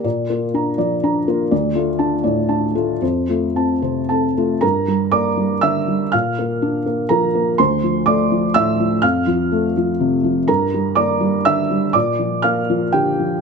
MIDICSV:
0, 0, Header, 1, 2, 480
1, 0, Start_track
1, 0, Tempo, 489396
1, 42, Time_signature, 3, 2, 24, 8
1, 2442, Tempo, 533333
1, 4362, Tempo, 505476
1, 5322, Tempo, 490196
1, 7722, Tempo, 481155
1, 11082, Tempo, 496689
1, 12973, End_track
2, 0, Start_track
2, 0, Title_t, "Felt piano"
2, 0, Program_c, 0, 0
2, 0, Control_c, 0, 64, 127
2, 42, Note_on_c, 0, 46, 49
2, 42, Note_on_c, 0, 74, 47
2, 61, Control_c, 0, 64, 0
2, 228, Control_c, 0, 64, 127
2, 287, Note_on_c, 0, 65, 46
2, 290, Note_on_c, 0, 58, 46
2, 434, Note_off_c, 0, 74, 0
2, 530, Note_on_c, 0, 62, 44
2, 536, Note_on_c, 0, 82, 52
2, 678, Note_off_c, 0, 65, 0
2, 680, Note_off_c, 0, 58, 0
2, 750, Note_off_c, 0, 62, 0
2, 766, Note_on_c, 0, 74, 57
2, 768, Note_on_c, 0, 53, 50
2, 923, Note_off_c, 0, 82, 0
2, 1014, Note_on_c, 0, 62, 50
2, 1016, Note_on_c, 0, 82, 54
2, 1157, Note_off_c, 0, 74, 0
2, 1158, Note_off_c, 0, 53, 0
2, 1231, Note_off_c, 0, 62, 0
2, 1254, Note_on_c, 0, 58, 54
2, 1255, Note_on_c, 0, 65, 51
2, 1398, Note_off_c, 0, 82, 0
2, 1452, Note_off_c, 0, 46, 0
2, 1484, Note_on_c, 0, 74, 48
2, 1490, Note_on_c, 0, 38, 60
2, 1491, Note_off_c, 0, 58, 0
2, 1491, Note_off_c, 0, 65, 0
2, 1508, Control_c, 0, 64, 0
2, 1647, Control_c, 0, 64, 127
2, 1718, Note_on_c, 0, 65, 53
2, 1720, Note_on_c, 0, 57, 49
2, 1861, Note_off_c, 0, 74, 0
2, 1950, Note_on_c, 0, 81, 54
2, 1953, Note_on_c, 0, 62, 48
2, 2099, Note_off_c, 0, 65, 0
2, 2100, Note_off_c, 0, 57, 0
2, 2171, Note_off_c, 0, 62, 0
2, 2193, Note_on_c, 0, 74, 52
2, 2199, Note_on_c, 0, 45, 51
2, 2340, Note_off_c, 0, 81, 0
2, 2439, Note_on_c, 0, 62, 45
2, 2440, Note_on_c, 0, 81, 54
2, 2579, Note_off_c, 0, 74, 0
2, 2581, Note_off_c, 0, 45, 0
2, 2649, Note_off_c, 0, 62, 0
2, 2678, Note_on_c, 0, 57, 43
2, 2679, Note_on_c, 0, 65, 50
2, 2817, Note_off_c, 0, 81, 0
2, 2878, Note_off_c, 0, 38, 0
2, 2917, Note_off_c, 0, 57, 0
2, 2918, Note_off_c, 0, 65, 0
2, 2918, Note_on_c, 0, 41, 52
2, 2918, Note_on_c, 0, 72, 44
2, 2936, Control_c, 0, 64, 0
2, 3116, Control_c, 0, 64, 127
2, 3163, Note_on_c, 0, 57, 41
2, 3169, Note_on_c, 0, 65, 43
2, 3307, Note_off_c, 0, 72, 0
2, 3404, Note_on_c, 0, 60, 35
2, 3407, Note_on_c, 0, 81, 42
2, 3549, Note_off_c, 0, 57, 0
2, 3552, Note_off_c, 0, 65, 0
2, 3621, Note_off_c, 0, 60, 0
2, 3641, Note_on_c, 0, 72, 44
2, 3644, Note_on_c, 0, 48, 41
2, 3792, Note_off_c, 0, 81, 0
2, 3881, Note_on_c, 0, 81, 60
2, 3890, Note_on_c, 0, 69, 43
2, 3894, Note_on_c, 0, 60, 37
2, 4030, Note_off_c, 0, 72, 0
2, 4032, Note_off_c, 0, 48, 0
2, 4109, Note_off_c, 0, 60, 0
2, 4138, Note_on_c, 0, 57, 39
2, 4140, Note_on_c, 0, 65, 45
2, 4275, Note_off_c, 0, 81, 0
2, 4329, Note_off_c, 0, 41, 0
2, 4331, Note_off_c, 0, 69, 0
2, 4349, Note_on_c, 0, 82, 81
2, 4361, Note_on_c, 0, 70, 60
2, 4362, Note_on_c, 0, 43, 56
2, 4368, Note_off_c, 0, 57, 0
2, 4369, Note_off_c, 0, 65, 0
2, 4382, Control_c, 0, 64, 0
2, 4561, Control_c, 0, 64, 127
2, 4607, Note_on_c, 0, 55, 50
2, 4808, Note_off_c, 0, 70, 0
2, 4830, Note_on_c, 0, 86, 81
2, 4835, Note_off_c, 0, 82, 0
2, 4838, Note_on_c, 0, 58, 47
2, 4838, Note_on_c, 0, 74, 56
2, 4990, Note_off_c, 0, 55, 0
2, 5074, Note_on_c, 0, 55, 49
2, 5225, Note_off_c, 0, 58, 0
2, 5287, Note_off_c, 0, 74, 0
2, 5303, Note_on_c, 0, 88, 87
2, 5314, Note_on_c, 0, 50, 50
2, 5317, Note_off_c, 0, 86, 0
2, 5317, Note_on_c, 0, 76, 68
2, 5465, Note_off_c, 0, 55, 0
2, 5563, Note_on_c, 0, 55, 47
2, 5707, Note_off_c, 0, 50, 0
2, 5768, Note_off_c, 0, 43, 0
2, 5770, Note_off_c, 0, 76, 0
2, 5796, Note_on_c, 0, 89, 79
2, 5797, Note_off_c, 0, 88, 0
2, 5806, Note_off_c, 0, 55, 0
2, 5806, Note_on_c, 0, 77, 62
2, 5808, Note_on_c, 0, 46, 56
2, 5827, Control_c, 0, 64, 0
2, 5982, Control_c, 0, 64, 127
2, 6060, Note_on_c, 0, 58, 55
2, 6289, Note_on_c, 0, 62, 50
2, 6437, Note_off_c, 0, 58, 0
2, 6487, Note_off_c, 0, 77, 0
2, 6521, Note_off_c, 0, 89, 0
2, 6524, Note_on_c, 0, 58, 52
2, 6671, Note_off_c, 0, 62, 0
2, 6747, Note_on_c, 0, 82, 82
2, 6760, Note_on_c, 0, 53, 56
2, 6761, Note_on_c, 0, 70, 62
2, 6907, Note_off_c, 0, 58, 0
2, 7001, Note_on_c, 0, 58, 51
2, 7145, Note_off_c, 0, 53, 0
2, 7204, Note_off_c, 0, 46, 0
2, 7208, Note_off_c, 0, 70, 0
2, 7230, Note_on_c, 0, 84, 84
2, 7234, Note_off_c, 0, 82, 0
2, 7242, Note_off_c, 0, 58, 0
2, 7243, Note_on_c, 0, 38, 58
2, 7245, Note_on_c, 0, 72, 70
2, 7259, Control_c, 0, 64, 0
2, 7407, Control_c, 0, 64, 127
2, 7479, Note_on_c, 0, 53, 58
2, 7689, Note_off_c, 0, 72, 0
2, 7696, Note_on_c, 0, 86, 81
2, 7711, Note_on_c, 0, 57, 56
2, 7712, Note_on_c, 0, 74, 64
2, 7715, Note_off_c, 0, 84, 0
2, 7863, Note_off_c, 0, 53, 0
2, 7955, Note_on_c, 0, 53, 54
2, 8098, Note_off_c, 0, 57, 0
2, 8160, Note_off_c, 0, 74, 0
2, 8179, Note_on_c, 0, 88, 102
2, 8185, Note_off_c, 0, 86, 0
2, 8192, Note_on_c, 0, 76, 75
2, 8193, Note_on_c, 0, 45, 53
2, 8337, Note_off_c, 0, 53, 0
2, 8432, Note_on_c, 0, 53, 54
2, 8573, Note_off_c, 0, 45, 0
2, 8630, Note_off_c, 0, 38, 0
2, 8634, Note_off_c, 0, 76, 0
2, 8653, Note_on_c, 0, 89, 89
2, 8660, Note_off_c, 0, 88, 0
2, 8666, Note_on_c, 0, 77, 64
2, 8667, Note_on_c, 0, 41, 63
2, 8669, Note_off_c, 0, 53, 0
2, 8687, Control_c, 0, 64, 0
2, 8844, Control_c, 0, 64, 127
2, 8904, Note_on_c, 0, 53, 56
2, 9153, Note_on_c, 0, 57, 56
2, 9296, Note_off_c, 0, 53, 0
2, 9352, Note_off_c, 0, 77, 0
2, 9386, Note_off_c, 0, 89, 0
2, 9403, Note_on_c, 0, 53, 58
2, 9539, Note_off_c, 0, 57, 0
2, 9634, Note_on_c, 0, 48, 57
2, 9781, Note_off_c, 0, 53, 0
2, 9872, Note_on_c, 0, 53, 55
2, 10018, Note_off_c, 0, 48, 0
2, 10074, Note_off_c, 0, 41, 0
2, 10107, Note_on_c, 0, 82, 85
2, 10115, Note_off_c, 0, 53, 0
2, 10115, Note_on_c, 0, 70, 66
2, 10116, Note_on_c, 0, 43, 64
2, 10134, Control_c, 0, 64, 0
2, 10283, Control_c, 0, 64, 127
2, 10371, Note_on_c, 0, 55, 54
2, 10566, Note_off_c, 0, 70, 0
2, 10584, Note_on_c, 0, 86, 85
2, 10595, Note_on_c, 0, 58, 54
2, 10596, Note_on_c, 0, 74, 74
2, 10597, Note_off_c, 0, 82, 0
2, 10751, Note_off_c, 0, 55, 0
2, 10836, Note_on_c, 0, 55, 57
2, 10983, Note_off_c, 0, 58, 0
2, 11047, Note_off_c, 0, 74, 0
2, 11075, Note_off_c, 0, 86, 0
2, 11081, Note_on_c, 0, 88, 95
2, 11086, Note_on_c, 0, 76, 73
2, 11091, Note_on_c, 0, 50, 51
2, 11222, Note_off_c, 0, 55, 0
2, 11330, Note_on_c, 0, 55, 52
2, 11466, Note_off_c, 0, 50, 0
2, 11519, Note_off_c, 0, 43, 0
2, 11526, Note_off_c, 0, 76, 0
2, 11545, Note_on_c, 0, 86, 79
2, 11556, Note_off_c, 0, 88, 0
2, 11557, Note_on_c, 0, 74, 65
2, 11558, Note_on_c, 0, 46, 58
2, 11562, Note_off_c, 0, 55, 0
2, 11575, Control_c, 0, 64, 0
2, 11714, Control_c, 0, 64, 127
2, 11798, Note_on_c, 0, 53, 46
2, 12005, Note_off_c, 0, 74, 0
2, 12020, Note_on_c, 0, 89, 81
2, 12033, Note_off_c, 0, 86, 0
2, 12035, Note_on_c, 0, 77, 65
2, 12036, Note_on_c, 0, 58, 53
2, 12186, Note_off_c, 0, 53, 0
2, 12284, Note_on_c, 0, 53, 55
2, 12424, Note_off_c, 0, 58, 0
2, 12485, Note_off_c, 0, 77, 0
2, 12504, Note_on_c, 0, 79, 87
2, 12512, Note_off_c, 0, 89, 0
2, 12515, Note_on_c, 0, 50, 47
2, 12519, Note_on_c, 0, 67, 59
2, 12666, Note_off_c, 0, 53, 0
2, 12765, Note_on_c, 0, 53, 50
2, 12903, Note_off_c, 0, 50, 0
2, 12965, Note_off_c, 0, 46, 0
2, 12967, Note_off_c, 0, 67, 0
2, 12973, Note_off_c, 0, 53, 0
2, 12973, Note_off_c, 0, 79, 0
2, 12973, End_track
0, 0, End_of_file